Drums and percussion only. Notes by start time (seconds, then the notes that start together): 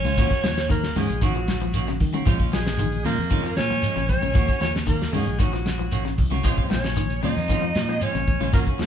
0.04 snare, closed hi-hat, high conga
0.17 kick, closed hi-hat, shekere
0.31 kick, snare, closed hi-hat
0.44 snare, closed hi-hat, high conga, shekere
0.57 snare, closed hi-hat
0.69 kick, closed hi-hat, low conga, shekere
0.84 snare
0.96 snare, open hi-hat, high conga, low conga, shekere
1.09 closed hi-hat
1.21 kick, closed hi-hat, shekere
1.34 closed hi-hat
1.48 snare, closed hi-hat, high conga, low conga, shekere
1.61 closed hi-hat, high conga
1.73 closed hi-hat, shekere
1.87 snare, closed hi-hat
2.00 kick, open hi-hat, high conga, low conga, shekere
2.14 closed hi-hat, high conga
2.26 kick, snare, closed hi-hat, shekere
2.40 kick
2.52 snare, closed hi-hat, high conga, shekere
2.66 snare, closed hi-hat
2.78 closed hi-hat, low conga, shekere
2.92 closed hi-hat
3.05 snare, open hi-hat, high conga, low conga, shekere
3.30 kick, closed hi-hat, shekere
3.45 snare
3.57 snare, closed hi-hat, high conga, shekere
3.70 snare, high conga
3.82 closed hi-hat, shekere
3.96 snare, closed hi-hat
4.08 kick, closed hi-hat, high conga, low conga, shekere
4.21 closed hi-hat, high conga
4.34 kick, closed hi-hat, shekere
4.49 kick, closed hi-hat
4.60 snare, closed hi-hat, high conga, shekere
4.75 snare, closed hi-hat
4.86 kick, closed hi-hat, low conga, shekere
5.02 snare
5.13 open hi-hat, high conga, low conga, shekere
5.27 closed hi-hat
5.39 kick, closed hi-hat, high conga, shekere
5.54 snare, closed hi-hat
5.65 snare, closed hi-hat, high conga, shekere
5.79 closed hi-hat, high conga
5.91 closed hi-hat, shekere
6.06 snare, closed hi-hat
6.18 kick, open hi-hat, low conga, shekere
6.32 snare, closed hi-hat, high conga
6.43 kick, closed hi-hat, shekere
6.58 kick
6.70 snare, closed hi-hat, high conga, shekere
6.84 snare, closed hi-hat
6.96 closed hi-hat, low conga, shekere
7.10 closed hi-hat
7.23 snare, open hi-hat, high conga, low conga, shekere
7.37 snare
7.49 kick, closed hi-hat, high conga, shekere
7.75 snare, closed hi-hat, high conga, shekere
7.89 snare
8.01 closed hi-hat, shekere
8.15 snare, closed hi-hat
8.27 kick, closed hi-hat, high conga, low conga, shekere
8.41 snare, closed hi-hat, high conga
8.53 kick, closed hi-hat, shekere
8.67 kick, closed hi-hat
8.79 snare, closed hi-hat, high conga, shekere